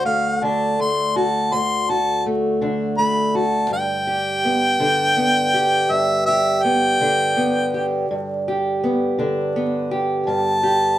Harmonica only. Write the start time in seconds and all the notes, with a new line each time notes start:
0.06 F5
0.44 A5
0.81 C6
1.17 A5
1.54 C6
1.90 A5
2.98 B5
3.36 A5
3.73 G5
5.92 E5
6.26 E5
6.64 G5
10.26 A5